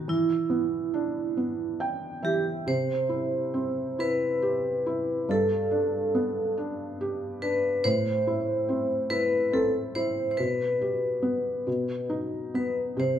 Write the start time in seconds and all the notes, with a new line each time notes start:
Already playing: B2 D#3 D#4
0.08 E3 E4
0.50 B3
0.94 D4
1.37 B3
1.80 G5
2.23 E3 G4 E5
2.67 C3 C5
3.09 E4
3.54 C4
3.99 E4 B4
4.42 G4
4.86 E4
5.29 G2 A4
5.71 D4
6.15 B3
6.57 D4
7.01 G4
7.42 D4 B4
7.84 A2 C5
8.27 E4
8.69 C4
9.10 E4 B4
9.52 C4 A4
9.95 E4 C5
10.31 C5
10.37 B2 B4
10.81 G4
11.22 B3
11.67 B2
12.09 D#4
12.54 B3 B4
12.97 C3 C5